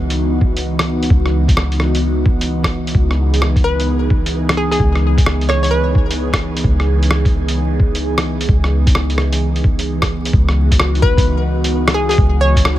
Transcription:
Already playing: C#2 E3 B3 D#4 F#4
0.10 closed hi-hat
0.41 kick
0.57 closed hi-hat
0.79 cross-stick, closed hi-hat
1.03 closed hi-hat
1.10 C#2, kick
1.26 cross-stick
1.48 kick, closed hi-hat
1.57 cross-stick
1.72 closed hi-hat
1.80 cross-stick
1.95 closed hi-hat
2.26 kick
2.41 closed hi-hat
2.63 kick, cross-stick, closed hi-hat
2.87 closed hi-hat
2.95 C#2 G#4, kick
3.11 cross-stick
3.34 closed hi-hat
3.42 cross-stick
3.56 kick, closed hi-hat
3.64 B4
3.80 closed hi-hat
4.10 kick
4.26 closed hi-hat
4.49 cross-stick, closed hi-hat
4.57 G#4
4.72 G#4, closed hi-hat
4.80 C#2, kick
4.96 cross-stick
5.18 kick, closed hi-hat
5.26 cross-stick
5.41 closed hi-hat
5.49 C#5, cross-stick
5.63 C#5, closed hi-hat
5.71 B4
5.95 kick
6.11 closed hi-hat
6.33 kick, cross-stick, closed hi-hat
6.57 closed hi-hat
6.64 C#2, kick
6.80 cross-stick
7.03 closed hi-hat
7.11 cross-stick
7.25 kick, closed hi-hat
7.48 closed hi-hat
7.80 kick
7.95 closed hi-hat
8.18 cross-stick, closed hi-hat
8.41 closed hi-hat
8.49 C#2, kick
8.64 cross-stick
8.87 kick, closed hi-hat
8.95 cross-stick
9.10 closed hi-hat
9.18 cross-stick
9.32 closed hi-hat
9.56 closed hi-hat
9.64 kick
9.79 closed hi-hat
10.02 kick, cross-stick, closed hi-hat
10.25 closed hi-hat
10.33 C#2 E3 B3 D#4 F#4, kick
10.49 cross-stick
10.71 kick, closed hi-hat
10.79 cross-stick
10.95 closed hi-hat
11.02 B4, kick
11.17 kick, closed hi-hat
11.64 closed hi-hat
11.88 cross-stick, closed hi-hat
11.94 G#4
12.09 G#4, closed hi-hat
12.18 C#2, kick
12.41 C#5
12.56 kick, closed hi-hat
12.65 cross-stick

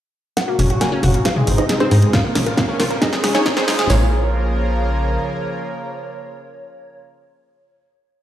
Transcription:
0.37 A#2 C#3 F#3 C#4 F#4 A#4 C#5 F#5, snare, closed hi-hat, riser
0.48 A#3 F#4
0.59 F#1 C#4 F#4, open hi-hat, mid tom
0.70 F#4, closed hi-hat
0.81 A#3 G#4 A#4 C#5 G#5, snare, closed hi-hat
0.92 C#4 F#4
1.03 F#1 F#4, open hi-hat, mid tom
1.14 A#3 F#4, closed hi-hat
1.25 G#2 C3 D#3 C4 D#4 F4 G#4 C5 F5, snare, closed hi-hat
1.36 G#3 G#4, mid tom
1.47 G#1 C4 G#4, open hi-hat
1.58 D#4 G#4 C5 D#5, closed hi-hat
1.69 G#3 G#4, snare, closed hi-hat
1.80 C4 D#4 G#4 C5, closed hi-hat
1.91 G#2 D#4 G#4, open hi-hat
2.02 G#3 G#4, closed hi-hat
2.13 A#2 C#3 F3 C#4 F4 A#4 C#5 F5, kick, snare, closed hi-hat
2.24 A#3 A#4
2.35 A#1 C#4 A#4, snare, open hi-hat, mid tom
2.46 F4 A#4, closed hi-hat
2.57 A#3 F4 A#4 C#5 F5, kick, snare, closed hi-hat
2.68 C#4 A#4
2.80 A#1 F4 A#4, snare, open hi-hat, mid tom
2.90 A#3 A#4, closed hi-hat
3.01 G#2 D#3 D#4 G#4 D#5, kick, snare, closed hi-hat
3.13 G#3 G#4, snare
3.24 C#2 C#4 G#4, snare, open hi-hat
3.35 C#4 D#4 G#4 C#5, snare, closed hi-hat
3.46 G#3 G#4, kick, snare, closed hi-hat
3.57 C4 C#4 D#4 G#4 C5, snare, closed hi-hat
3.68 G#1 D#4 G#4, snare, open hi-hat
3.79 G#3 G#4, snare, closed hi-hat, mid tom
3.90 A#1 C#3 F3 A#3 F4 A#4 C#5, snare, open hi-hat

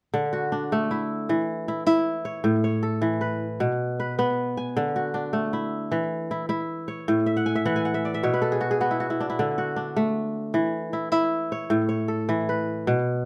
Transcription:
0.14 D3
0.33 F#4
0.52 D4
0.72 A3
0.91 E4
1.29 E3
1.68 E4
1.87 E4
2.25 C#5
2.44 A2
2.64 C#5
2.83 A4
3.02 E3
3.21 B4
3.60 B2
4.00 B4
4.19 B3 B4
4.57 G#5
4.77 D3
4.96 F#4
5.14 D4
5.33 A3
5.53 E4
5.92 E3
6.31 E4
6.49 E4
6.88 C#5
7.08 A2
7.26 E5
7.37 F#5
7.46 G#5
7.55 E5
7.65 E3 F#5
7.76 G#5
7.85 F#5
7.94 E5
8.05 D5
8.14 E5
8.23 B2 C#5
8.34 B4
8.42 A4
8.52 G#4
8.61 F#4
8.71 G#4
8.81 B3 F#4
8.91 E4
9.00 F#4
9.10 E4
9.20 D4
9.30 E4
9.39 D3
9.58 F#4
9.76 D4
9.96 A3
10.54 E3
10.93 E4
11.12 E4
11.52 C#5
11.70 A2
11.89 C#5
12.08 A4
12.29 E3
12.49 B4
12.87 B2

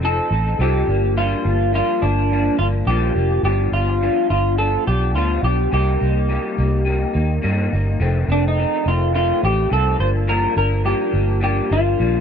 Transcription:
Already playing: F1
0.02 F3 C4 D#4 A4
0.31 A1 C4 D#4 A4
0.59 C2 F3 C4 D#4 G4 A4
0.87 G1 F3 A#3 D4
1.17 G2 F3 A#3 D4 F4
1.45 G1 F3 A#3 D4
1.73 G2 F3 A#3 D4 F4
2.02 G1 F3 A#3 D4
2.31 G2 F3 A#3 D4
2.59 G1 F3 A#3 D4 F4
2.86 A#1 G2 F3 A#3 D4 G4
3.15 F1 F3 A#3 D4
3.43 G1 G2 F3 B3 D4 G4
3.72 G1 F3 B3 D4 F4
4.01 G2 F3 B3 D4
4.29 G1 F3 B3 D4 F4
4.57 G2 F3 B3 D4 A4
4.87 B1 F3 B3 D4 G4
5.15 D2 G2 F3 B3 D4 F4
5.43 B1 F3 B3 D4 G4
5.72 C2 C3 G3 A#3 D#4 G4
6.00 C2 G3 A#3 D#4
6.29 C3 G3 A#3 D#4
6.57 C2 G3 A#3 D#4
6.85 C3 G3 A#3 D#4
7.13 D#2 G3 A#3 D#4
7.42 G2 C3 G3 A#3 D#4
7.72 G1 G3 A#3 D#4
8.00 F1 F2 D#3 A3 C4
8.28 F1 D#3 A3 C4 D4
8.48 D#4
8.58 F2 D#3 A3 C4
8.86 F1 D#3 A3 C4 F4
9.13 F2 D#3 A3 C4 F4
9.42 A1 D#3 A3 C4 G4
9.70 C2 F2 D#3 A3 C4 A4
9.98 G1 F3 A#3 D4 C5
10.27 G2 F3 A#3 D4 A#4
10.56 G1 F3 A#3 D4 A#4
10.84 G2 F3 A#3 D4 G4
11.13 G1 F3 A#3 D4
11.40 G2 F3 A#3 D4 G4
11.70 G1 F3 A#3 D4 F4
11.99 A#1 G2 F3 A#3 D4

